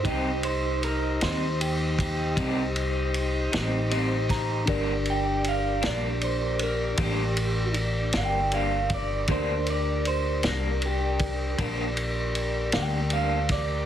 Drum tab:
RD |xxxxxxxxxxxx|xxxxxxxxxxxx|xxxxxxxxxxxx|
SD |---o-----o-o|---o-----o--|---o-----o-o|
BD |o----oo----o|o-----o----o|o----oo----o|